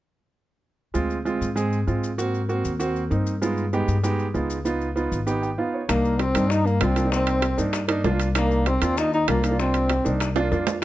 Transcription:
0.94 D2 G#3 C4 F4, maracas
1.10 maracas
1.25 G#3 C4 F4, maracas
1.41 G#2, maracas
1.56 G#3 C4 G#4, maracas
1.73 maracas
1.87 G#2 G#3 C4 F4, maracas
2.04 maracas
2.18 A#3 C4 F#4, maracas
2.34 maracas
2.49 A#3 C4 F#4, maracas
2.65 D#2, maracas
2.79 A#3 C4 F#4, maracas
2.96 maracas
3.10 G2 A#3 C4 D#4, maracas
3.27 maracas
3.42 G#3 B3 D#4 F4, maracas
3.57 maracas
3.73 G#3 B3 D#4 G4, maracas
3.88 G2, maracas
4.03 G#3 B3 D#4 G4, maracas
4.19 maracas
4.34 C#2 G#3 B3 D#4 F4, maracas
4.50 maracas
4.65 B3 D#4 F4, maracas
4.81 maracas
4.96 B3 D#4 F4, maracas
5.12 G#1, maracas
5.26 B3 D#4 G4, maracas
5.43 G5, maracas
5.58 B3 D#4 F4 F5
5.74 C#5
5.89 C2 A#3 D4 D#4, high bongo, high timbale, maracas
6.05 high bongo, maracas
6.19 C4, high bongo, high timbale, low timbale, maracas
6.35 G2 A#3 D4 D#4, high bongo, high timbale, maracas
6.50 D#4, high bongo, maracas
6.65 A#3, high bongo, maracas
6.81 C2 A#3 C4 D4 F4, high bongo, low bongo, high timbale, low timbale, maracas
6.96 A#3 D4 F4, high timbale, maracas
7.04 A#3 D4 D#4
7.12 C4, high bongo, maracas
7.27 high bongo, high timbale, maracas
7.42 high bongo, high timbale, low timbale, maracas
7.57 G2 A#3 D4 D#4, high bongo, maracas
7.73 high bongo, high timbale, maracas
7.88 A#3 D4 D#4, high bongo, high timbale, maracas
8.04 C2 A#3 D4 F4, high bongo, low bongo, low timbale, maracas
8.20 high timbale, maracas
8.35 A#3 D4 D#4, high bongo, high timbale, maracas
8.51 high bongo, maracas
8.66 C4, high bongo, high timbale, low timbale, maracas
8.81 D#2 A#3 D4 F4, high timbale, maracas
8.97 D#4, high bongo, maracas
9.13 D#4, high bongo, maracas
9.28 C2 A#3 D4 F4, high bongo, low bongo, high timbale, low timbale, maracas
9.43 A#3 D4 D#4, high timbale, maracas
9.51 A#3 D4 F4
9.59 C4, high bongo, maracas
9.74 high bongo, high timbale, maracas
9.89 high bongo, high timbale, low timbale, maracas
10.05 C2 A#3 D4 D#4, high bongo, maracas
10.20 high bongo, high timbale, maracas
10.36 A#3 D4 F4, high bongo, high timbale, maracas
10.51 F2 A#3 D4 F4, high bongo, low bongo, maracas
10.67 low timbale, maracas

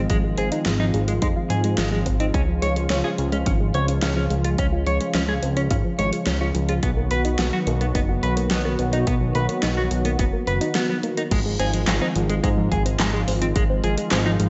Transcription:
Already playing: D#3 F3 G#3 C4 F4
0.10 G#1 F3 G#3, kick, closed hi-hat
0.24 G#3
0.38 G#1 C4 G#4, closed hi-hat
0.52 D#4, closed hi-hat
0.66 G#1 G#3 F4, snare, closed hi-hat
0.80 F3 D#4
0.94 G#1 G#3, closed hi-hat
1.08 G#3, closed hi-hat
1.22 F2 G#3 D#4, kick, closed hi-hat
1.36 F4
1.50 G#2 F3 G#4, closed hi-hat
1.64 G#3, closed hi-hat
1.78 G#1 F3 G#3, snare, closed hi-hat
1.92 G#3
2.06 G#1 C4, kick, closed hi-hat
2.20 C4 D#4, closed hi-hat
2.34 C#2 C#3 C#4 F4, kick, closed hi-hat
2.48 F3
2.62 C#2 G#3 C#5, closed hi-hat
2.76 G#3, closed hi-hat
2.90 C#2 C#4, snare, closed hi-hat
3.04 F4 G#4
3.18 C#2 F3, closed hi-hat
3.32 G#3 C#4, closed hi-hat
3.46 G#1 F3 C#4, kick, closed hi-hat
3.60 G#3
3.74 C#2 C4 C#5, closed hi-hat
3.88 C#4, closed hi-hat
4.02 C#2 C#4 F4, snare, closed hi-hat
4.16 F3 C#4
4.30 C#2 G#3, closed hi-hat
4.44 G#3 F4, closed hi-hat
4.58 C#2 C#4, kick, closed hi-hat
4.72 F4
4.86 C#2 F3 C#5, closed hi-hat
5.00 G#3, closed hi-hat
5.14 C#2 F3 C#4, snare, closed hi-hat
5.29 G#3 G#4
5.43 C#2 C4, closed hi-hat
5.57 C#4, closed hi-hat
5.71 G#1 C#4 F4, kick, closed hi-hat
5.85 F3
5.99 G#1 G#3 C#5, closed hi-hat
6.13 G#3, closed hi-hat
6.27 C#2 C#4, snare, closed hi-hat
6.41 C#4 F4
6.55 C#2 F3, closed hi-hat
6.69 G#3 F4, closed hi-hat
6.83 B1 D#3 F#3 B3 F#4, kick, closed hi-hat
6.97 A#3
7.11 B1 B3 B4, closed hi-hat
7.25 D#4, closed hi-hat
7.39 B1 B3 F#4, snare, closed hi-hat
7.53 F#3 F#4
7.67 B1 A#3, closed hi-hat
7.81 A#3 B3, closed hi-hat
7.95 F#1 B3 D#4, kick, closed hi-hat
8.09 F#4
8.23 B1 F#3 B4, closed hi-hat
8.37 A#3, closed hi-hat
8.51 B1 F#3 B3, snare, closed hi-hat
8.65 A#3 B3
8.79 B1 B3, closed hi-hat
8.93 D#4, closed hi-hat
9.07 B1 B3 F#4, kick, closed hi-hat
9.21 F#3
9.35 B1 A#3 B4, closed hi-hat
9.49 A#3, closed hi-hat
9.63 B1 B3 D#4, snare, closed hi-hat
9.77 F#4
9.91 B1 F#3, closed hi-hat
10.05 A#3 B3, closed hi-hat
10.19 F#1 F#3 B3, kick, closed hi-hat
10.33 A#3
10.47 F#1 B3 B4, closed hi-hat
10.61 D#4, closed hi-hat
10.75 B3 F#4, snare, closed hi-hat
10.89 F#3 B3
11.03 A#3, closed hi-hat
11.17 A#3 D#4, closed hi-hat
11.31 G#1 D#3 F3 G#3 F4, kick, closed hi-hat, crash
11.46 G#3
11.59 G#1 C4 G#4, closed hi-hat
11.74 F3, closed hi-hat
11.87 G#1 G#3, snare, clap, closed hi-hat
12.01 C4 D#4
12.15 G#1 F3, closed hi-hat
12.29 G#3, closed hi-hat
12.43 G#2 G#3 C4, kick, closed hi-hat
12.58 F3
12.71 G#1 G#3 G#4, kick, closed hi-hat
12.86 C4, closed hi-hat
12.99 G#1 F3 G#3, snare, clap, closed hi-hat
13.14 G#3
13.28 G#1 C4, open hi-hat
13.42 F3 C4, closed hi-hat
13.56 G#1 G#3, kick, closed hi-hat
13.70 C4
13.84 G#1 F3 G#4, closed hi-hat
13.98 G#3, closed hi-hat
14.12 G#1 G#3 C4, snare, clap, closed hi-hat
14.26 F3 D#4
14.40 G#1 G#3, closed hi-hat

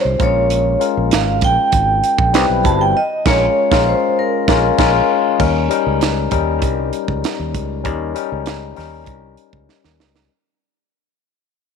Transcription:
Already playing: G3 C#4 D#4 F4 C5 C#5
0.05 C2
0.18 A#1 G#3 C#4 F4 A#4, kick, closed hi-hat
0.23 C#5
0.50 closed hi-hat
0.79 G#3 C#4 F4 A#4, closed hi-hat
0.97 A#1
1.11 G#1 F5, snare, closed hi-hat
1.41 A#1 G5, kick, closed hi-hat
1.72 G#1, kick, closed hi-hat
2.04 closed hi-hat
2.19 A#1, kick
2.33 C2 G3 C4 E4 B4, snare, closed hi-hat
2.50 B1
2.64 G1 G3 C4 E4 F#4 A5 B5, kick, closed hi-hat
2.81 G5
2.97 D#5
3.25 A#1 G#3 C#4 F4 A#4 C#5, kick, snare, crash
3.71 A#1 G#3 C#4 F4 A#4, kick, snare
3.89 C5
4.19 A#4
4.47 A#1 G#3 C#4 F4 A#4, kick, snare
4.78 A#1 G#3 C#4 F4 A#4, kick, snare, crash
5.39 D#2 G3 C#4 D#4 A#4, kick, crash
5.69 G3 C#4 D#4 A#4, closed hi-hat
5.86 C#2
6.01 snare, closed hi-hat
6.31 D#2 G3 C#4 D#4 A#4, kick, closed hi-hat
6.62 C2, kick, closed hi-hat
6.93 closed hi-hat
7.08 C#2, kick
7.24 snare, closed hi-hat
7.39 D#2
7.55 C#2, kick, closed hi-hat
7.84 D#2 G3 C#4 D#4 A#4, kick, closed hi-hat
8.14 G3 C#4 D#4 A#4, closed hi-hat
8.32 C#2
8.46 snare, closed hi-hat
8.76 D#2 G3 C#4 D#4 A#4, snare, open hi-hat
9.06 C2, kick, closed hi-hat
9.37 closed hi-hat
9.53 C#2, kick
9.69 snare
9.84 D#2, snare
10.00 C#2, snare
10.16 snare

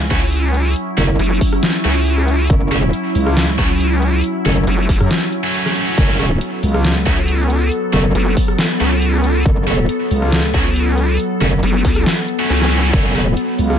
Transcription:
Already playing: F#3 C#4 E4
0.10 C#2 A3 C#4 F#4, kick, closed hi-hat
0.32 closed hi-hat
0.54 closed hi-hat
0.76 closed hi-hat
0.97 F#1 A3 C#4 F#4, cross-stick, closed hi-hat
1.19 F#1, closed hi-hat
1.41 kick, open hi-hat
1.53 cross-stick
1.63 snare, closed hi-hat
1.84 C#2 A3 C#4 F#4, closed hi-hat
2.06 closed hi-hat
2.18 cross-stick
2.28 closed hi-hat
2.50 F#1, kick, closed hi-hat
2.71 A3 C#4 F#4, cross-stick, closed hi-hat
2.93 closed hi-hat
3.15 C#2, open hi-hat
3.27 cross-stick
3.37 snare, closed hi-hat
3.58 C#2 A3 C#4 F#4, kick, closed hi-hat
3.80 closed hi-hat
4.02 closed hi-hat
4.24 closed hi-hat
4.45 F#1 A3 C#4 F#4, cross-stick, closed hi-hat
4.67 F#1, closed hi-hat
4.89 F#1, kick, open hi-hat
5.00 F#2, cross-stick
5.11 snare, closed hi-hat
5.32 closed hi-hat
5.44 A3 C#4 F#4
5.54 closed hi-hat
5.66 cross-stick, snare
5.76 closed hi-hat
5.98 F#1 B3 A4, kick, closed hi-hat
6.19 A3 C#4 F#4, cross-stick, closed hi-hat
6.41 closed hi-hat
6.63 C#2, open hi-hat
6.74 cross-stick
6.85 snare, closed hi-hat
7.06 C#2 A3 C#4 F#4, kick, closed hi-hat
7.28 closed hi-hat
7.50 closed hi-hat
7.72 closed hi-hat
7.93 F#1 A3 C#4 F#4, cross-stick, closed hi-hat
8.15 F#1, closed hi-hat
8.37 kick, open hi-hat
8.48 cross-stick
8.59 snare, closed hi-hat
8.80 C#2 A3 C#4 F#4, closed hi-hat
9.02 closed hi-hat
9.13 cross-stick
9.24 closed hi-hat
9.45 F#1, kick, closed hi-hat
9.67 A3 C#4 F#4, cross-stick, closed hi-hat
9.89 closed hi-hat
10.11 C#2, open hi-hat
10.22 cross-stick
10.32 snare, closed hi-hat
10.54 C#2 A3 C#4 F#4, kick, closed hi-hat
10.76 closed hi-hat
10.98 closed hi-hat
11.19 closed hi-hat
11.41 F#1 A3 C#4 F#4, cross-stick, closed hi-hat
11.63 F#1, closed hi-hat
11.85 C#2, kick, open hi-hat
11.96 cross-stick
12.06 snare, closed hi-hat
12.28 closed hi-hat
12.39 A3 C#4 F#4
12.50 C#2, closed hi-hat
12.61 cross-stick, snare
12.72 closed hi-hat
12.93 F#1 F#4, kick, closed hi-hat
13.15 A3 C#4 F#4, cross-stick, closed hi-hat
13.37 closed hi-hat
13.58 C#2, open hi-hat
13.70 cross-stick

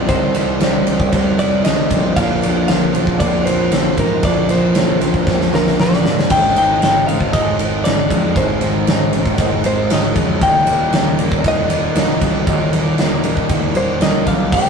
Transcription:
Already playing: G3 C4 D#4 G4 D5
0.08 C2 C3 G3 C4 D#4 G4 C5, kick, ride
0.34 C2 G3 C4 D#4 G4, snare, ride
0.60 C2 C3 G3 C4 D#4 G4, snare, ride
0.86 C2 G3 C4 D#4 G4, ride
1.00 kick
1.12 C2 C3 G3 C4 D#4 G4, kick, ride
1.39 C2 C4 D#4 G4 D5, ride
1.64 C2 C3 G3 C4 D#4 G4 D#5, snare, ride
1.91 A#1 G3 C4, kick, ride
2.16 A#1 A#2 F3 A#3 C4 F4 F5, kick, ride
2.43 A#1 F3 A#3 C4 F4, snare, ride
2.68 A#1 A#2 F3 A#3 C4 F4 F5, snare, ride
2.95 A#1 F3 A#3 C4 F4, ride
3.07 kick
3.20 A#1 A#2 F3 A#3 C4 D5, kick, ride
3.24 F4
3.46 A#1 A#3 C4 F4 C5, ride
3.72 A#1 A#2 F3 A#3 C4 F4, snare, ride
3.98 G#2 F3 A#3 A#4, kick, ride
4.23 A#1 A#2 F3 A#3 C4 F4 D5, kick, ride
4.49 A#1 F3 A#3 C4 F4 C5, snare, ride
4.75 A#1 A#2 F3 A#3 C4 F4, snare, ride
5.01 A#1 F3 A#3 C4 F4, ride
5.14 kick
5.27 A#1 A#2 F3 A#3 C4 F4, kick, snare
5.41 snare
5.53 A#1 A#3 C4 F4 A#4, snare
5.67 snare
5.79 A#1 A#2 F3 A#3 C4 F4 D5, snare
5.93 snare
6.05 G#2 F3 A#3, snare
6.19 snare
6.30 G#1 G#2 D#3 G#3 C4 D#4 G5, kick, ride, crash
6.56 G#1 D#3 G#3 C4 D#4 G5, ride
6.82 G#1 G#2 D#3 G#3 C4 D#4 G5, snare, ride
7.07 G#1 G#3 C4 D#4 F5, ride
7.11 D#3
7.21 kick
7.33 G#1 G#2 D#3 G#3 C4 D#4 D#5, kick, ride
7.59 G#1 G#3 C4 D#4, ride
7.84 G#1 G#2 D#3 G#3 C4 D#4 D5, snare, ride
8.10 F2 D#3 G#3, kick, ride
8.36 G#1 G#2 D#3 G#3 C4 D#4 C5, kick, ride
8.61 G#1 D#3 G#3 C4 D#4, snare, ride
8.87 G#1 G#2 D#3 G#3 C4 D#4, snare, ride
9.13 G#1 D#3 G#3 C4 D#4, ride
9.26 kick
9.38 G#1 G#2 D#3 G#3 C4 D#4, kick, ride
9.64 G#1 G#3 C4 D#4 C5, ride
9.90 G#1 G#2 D#3 G#3 C4 D#4 D#5, snare, ride
10.16 F2 D#3 G#3, kick, ride
10.41 D#1 D#2 A#2 D#3 G3 A#3 D#4 G5, kick, ride
10.67 D#1 A#2 D#3 G3 A#3 D#4, ride
10.93 D#1 D#2 A#2 D#3 G3 A#3 D#4, snare, ride
11.18 D#1 A#2 D#3 G3 A#3 D#4, ride
11.32 kick
11.44 D#1 D#2 A#2 D#3 G3 A#3 D#4 D#5, kick, ride
11.70 D#1 D#3 G3 A#3 D#4, ride
11.96 D#1 D#2 A#2 D#3 G3 A#3 D#4, snare, ride
12.21 C2 A#2 D#3 G3, kick, ride
12.47 D#1 D#2 A#2 D#3 G3 A#3 D#4, kick, ride
12.73 D#1 A#2 D#3 G3 A#3 D#4, snare, ride
12.98 D#1 D#2 A#2 D#3 G3 A#3 D#4, snare, ride
13.23 D#1 A#2 D#3 G3 A#3 D#4, ride
13.37 kick
13.49 D#1 D#2 A#2 D#3 G3 A#3 D#4, kick, ride
13.75 D#1 D#3 G3 A#3 D#4 C5, ride
14.00 D#1 D#2 A#2 D#3 G3 A#3 D#4 D#5, snare, ride
14.26 B1 A#2 D#3 G3 F5, kick, ride
14.52 C2 C3 G3 C4 D#4 G4 G5, kick, crash, tambourine

